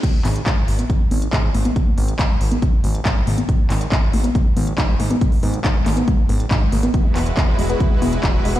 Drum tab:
CC |x---------------|----------------|----------------|----------------|
HH |x-oxx-oxx-oxx-ox|x-oxx-oxx-oxx-ox|x-oxx-oxx-oxx-ox|xooxx-oxx-oxx-ox|
CP |--x-x-------x---|----x-------x---|--x-x-------x---|----x-x-----x---|
BD |o---o---o---o---|o---o---o---o---|o---o---o---o---|o---o---o---o---|

CC |----------------|
HH |x-oxx-oxx-oxx-ox|
CP |--x-x-------x---|
BD |o---o---o---o---|